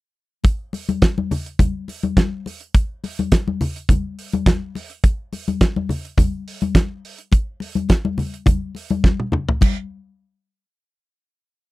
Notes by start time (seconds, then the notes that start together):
0.44 kick, closed hi-hat, muted conga
0.73 open hi-hat, muted conga
0.89 closed hi-hat, high conga
1.02 kick, snare, closed hi-hat
1.18 high conga
1.31 open hi-hat, muted conga, low conga
1.46 closed hi-hat
1.59 kick, closed hi-hat, muted conga, high conga, low conga
1.88 open hi-hat, muted conga
2.03 closed hi-hat, high conga
2.17 kick, snare, closed hi-hat, muted conga, high conga
2.46 open hi-hat, muted conga
2.61 closed hi-hat
2.75 kick, closed hi-hat, muted conga
3.04 open hi-hat, muted conga
3.19 closed hi-hat, high conga
3.32 kick, snare, closed hi-hat
3.48 high conga
3.61 open hi-hat, muted conga, low conga
3.76 closed hi-hat
3.89 kick, closed hi-hat, high conga, low conga
4.19 open hi-hat
4.32 closed hi-hat, high conga
4.46 kick, snare, closed hi-hat, muted conga, high conga
4.75 open hi-hat, muted conga
4.90 closed hi-hat
5.04 kick, closed hi-hat, muted conga
5.33 open hi-hat, muted conga
5.48 closed hi-hat, high conga
5.61 kick, snare, closed hi-hat
5.76 high conga
5.89 open hi-hat, muted conga, low conga
6.05 closed hi-hat
6.18 kick, closed hi-hat, high conga, low conga
6.48 open hi-hat
6.61 closed hi-hat, high conga
6.75 kick, snare, closed hi-hat, high conga
7.05 open hi-hat
7.18 closed hi-hat
7.32 kick, closed hi-hat, muted conga
7.60 open hi-hat, muted conga
7.75 closed hi-hat, high conga
7.89 kick, snare, closed hi-hat, muted conga
8.05 high conga
8.18 open hi-hat, low conga
8.34 closed hi-hat
8.46 kick, closed hi-hat, muted conga, high conga, low conga
8.75 open hi-hat, muted conga
8.90 closed hi-hat, high conga
9.04 kick, snare, high conga
9.20 high tom
9.32 mid tom, low conga
9.49 floor tom
9.61 kick, crash, high conga